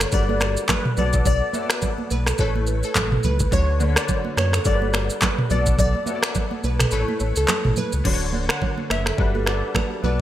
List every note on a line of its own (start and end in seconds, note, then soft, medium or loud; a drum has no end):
0.00 0.15 D3 medium
0.00 0.12 D4 medium
0.00 0.14 F4 medium
0.00 0.13 F#4 medium
0.00 0.09 A4 medium
0.00 0.12 B4 medium
0.00 0.14 C#5 medium
0.00 finger snap medium
0.00 cross-stick medium
0.00 shaker medium
0.11 0.57 G1 loud
0.11 0.82 G3 medium
0.11 0.82 D4 medium
0.11 0.83 F#4 medium
0.11 0.83 B4 medium
0.11 0.55 D5 loud
0.11 kick loud
0.11 shaker medium
0.29 0.41 A4 medium
0.29 high conga medium
0.40 0.52 B4 medium
0.40 finger snap medium
0.40 cross-stick loud
0.40 shaker medium
0.57 shaker medium
0.69 0.81 B4 medium
0.69 0.84 B4 medium
0.69 finger snap medium
0.69 kick medium
0.69 cross-stick medium
0.69 clap medium
0.69 high conga medium
0.69 low conga medium
0.69 shaker medium
0.85 mid tom loud
0.96 1.42 B1 medium
0.96 1.44 B3 medium
0.96 1.44 F#4 medium
0.96 1.45 A4 medium
0.96 1.09 B4 medium
0.96 1.06 C#5 medium
0.96 1.12 D5 medium
0.96 high conga medium
0.96 low conga medium
0.96 shaker medium
1.05 1.48 D5 medium
1.13 kick loud
1.13 shaker medium
1.26 1.37 D5 loud
1.26 1.50 D5 loud
1.26 kick loud
1.26 low conga medium
1.26 shaker medium
1.53 2.38 B3 medium
1.53 2.39 F#4 medium
1.53 2.39 A4 medium
1.53 1.62 C#5 medium
1.53 1.66 E5 medium
1.53 high conga medium
1.53 shaker medium
1.62 2.43 D5 medium
1.70 1.95 B4 medium
1.70 finger snap loud
1.70 cross-stick loud
1.70 shaker medium
1.82 1.94 D5 medium
1.82 kick medium
1.82 low conga medium
1.82 shaker medium
1.98 high conga medium
2.11 2.33 B1 loud
2.11 2.22 B4 medium
2.11 2.35 B4 medium
2.11 high conga medium
2.11 shaker medium
2.26 2.36 A4 medium
2.26 finger snap medium
2.26 cross-stick medium
2.26 shaker medium
2.38 2.83 A1 loud
2.38 3.30 A3 medium
2.38 3.30 E4 medium
2.38 2.54 A4 medium
2.38 3.31 B4 medium
2.38 2.51 C#5 medium
2.38 3.31 C#5 medium
2.38 kick loud
2.38 shaker medium
2.56 high conga medium
2.67 2.79 B4 medium
2.67 shaker medium
2.83 2.92 A4 medium
2.83 2.94 A4 medium
2.83 shaker medium
2.95 3.18 A1 loud
2.95 finger snap medium
2.95 kick medium
2.95 cross-stick medium
2.95 clap medium
2.95 high conga medium
2.95 low conga medium
2.95 shaker medium
3.12 3.21 A4 medium
3.12 mid tom loud
3.23 3.46 C#2 medium
3.23 3.38 B4 medium
3.23 high conga medium
3.23 low conga medium
3.23 shaker medium
3.39 3.49 B4 medium
3.39 kick loud
3.39 shaker medium
3.51 3.97 D2 loud
3.51 3.75 D3 medium
3.51 3.75 D4 medium
3.51 3.75 F#4 medium
3.51 3.64 C#5 loud
3.51 3.67 C#5 loud
3.51 3.76 C#5 medium
3.51 kick loud
3.51 low conga medium
3.51 shaker medium
3.79 4.65 D3 medium
3.79 4.64 D4 medium
3.79 4.64 F#4 medium
3.79 3.89 B4 medium
3.79 3.92 D5 medium
3.79 high conga medium
3.79 shaker medium
3.88 4.69 C#5 medium
3.96 4.08 D5 medium
3.96 finger snap loud
3.96 cross-stick loud
3.96 shaker medium
4.08 4.20 C#5 medium
4.08 kick medium
4.08 low conga medium
4.08 shaker medium
4.25 high conga medium
4.37 4.59 F#2 medium
4.37 4.49 B4 medium
4.37 4.52 C#5 medium
4.37 finger snap medium
4.37 cross-stick medium
4.37 high conga medium
4.37 shaker medium
4.53 4.62 A4 medium
4.53 finger snap medium
4.53 cross-stick medium
4.53 shaker medium
4.64 5.10 G1 loud
4.64 5.35 G3 medium
4.64 5.35 D4 medium
4.64 5.35 F#4 medium
4.64 4.74 A4 medium
4.64 5.08 D5 loud
4.64 kick loud
4.64 shaker medium
4.73 5.39 B4 medium
4.82 4.90 A4 medium
4.82 high conga medium
4.93 5.05 B4 medium
4.93 finger snap medium
4.93 cross-stick loud
4.93 shaker soft
5.10 shaker medium
5.22 5.34 B4 medium
5.22 5.37 B4 medium
5.22 finger snap medium
5.22 kick loud
5.22 cross-stick medium
5.22 clap medium
5.22 high conga medium
5.22 low conga medium
5.22 shaker medium
5.38 mid tom loud
5.49 5.95 B1 loud
5.49 5.97 B3 medium
5.49 5.97 F#4 medium
5.49 5.98 A4 medium
5.49 5.62 B4 medium
5.49 5.65 D5 medium
5.49 5.98 D5 medium
5.49 high conga medium
5.49 low conga medium
5.49 shaker medium
5.66 kick loud
5.66 shaker medium
5.79 5.90 D5 loud
5.79 6.03 D5 loud
5.79 kick loud
5.79 low conga medium
5.79 shaker medium
5.95 high conga medium
6.06 6.91 B3 medium
6.06 6.92 F#4 medium
6.06 6.92 A4 medium
6.06 6.15 C#5 medium
6.06 6.19 E5 medium
6.06 high conga medium
6.06 shaker medium
6.15 6.96 D5 medium
6.23 6.48 B4 medium
6.23 finger snap loud
6.23 cross-stick loud
6.23 shaker medium
6.35 6.47 D5 medium
6.35 kick medium
6.35 low conga medium
6.35 shaker medium
6.51 high conga medium
6.64 6.86 B1 medium
6.64 6.75 B4 medium
6.64 6.88 B4 medium
6.64 high conga medium
6.64 shaker medium
6.79 6.88 A4 medium
6.79 finger snap medium
6.79 cross-stick medium
6.79 mid tom loud
6.79 shaker medium
6.91 7.05 A1 loud
6.91 7.83 A3 medium
6.91 7.83 E4 medium
6.91 7.03 A4 medium
6.91 7.06 A4 medium
6.91 7.83 B4 medium
6.91 7.84 C#5 medium
6.91 shaker medium
7.08 high conga medium
7.20 7.33 A1 medium
7.20 7.32 C#5 medium
7.20 shaker medium
7.36 7.46 C#2 medium
7.36 7.45 A4 medium
7.36 7.47 A4 medium
7.36 shaker medium
7.48 finger snap medium
7.48 cross-stick medium
7.48 clap medium
7.48 high conga medium
7.48 low conga medium
7.48 shaker medium
7.65 7.74 A1 medium
7.65 7.73 A4 medium
7.65 mid tom loud
7.76 7.91 B4 medium
7.76 high conga medium
7.76 low conga medium
7.76 shaker medium
7.92 8.02 C#2 medium
7.92 8.02 B4 medium
7.92 shaker medium
8.04 8.49 D1 loud
8.04 8.93 D3 medium
8.04 8.93 D4 medium
8.04 8.94 F#4 medium
8.04 8.13 B4 medium
8.04 8.17 C#5 loud
8.04 kick loud
8.04 crash medium
8.04 low conga medium
8.13 8.97 C#5 loud
8.33 8.45 D5 medium
8.33 high conga medium
8.49 8.61 F#5 medium
8.49 finger snap loud
8.49 cross-stick loud
8.61 8.73 C#5 medium
8.61 kick medium
8.61 low conga medium
8.78 high conga medium
8.90 9.12 F#1 medium
8.90 9.02 B4 medium
8.90 9.05 E5 medium
8.90 finger snap medium
8.90 cross-stick medium
8.90 high conga medium
9.06 9.15 A4 medium
9.06 finger snap medium
9.06 cross-stick medium
9.17 9.63 G1 loud
9.17 9.41 G3 loud
9.17 9.42 D4 medium
9.17 9.42 F#4 medium
9.17 9.42 B4 loud
9.17 kick loud
9.35 9.43 A4 medium
9.35 high conga medium
9.45 10.03 G3 medium
9.45 10.03 D4 medium
9.45 10.01 F#4 medium
9.45 9.55 A4 medium
9.45 9.58 B4 medium
9.45 9.61 D5 medium
9.45 finger snap medium
9.45 cross-stick medium
9.54 10.07 B4 medium
9.75 9.87 B4 medium
9.75 finger snap medium
9.75 kick medium
9.75 cross-stick medium
9.75 high conga medium
9.75 low conga medium
10.02 10.21 B1 medium
10.02 10.21 B3 medium
10.02 10.21 F#4 medium
10.02 10.21 A4 medium
10.02 10.15 B4 medium
10.02 10.18 B4 medium
10.02 10.21 D5 medium
10.02 high conga medium
10.02 low conga medium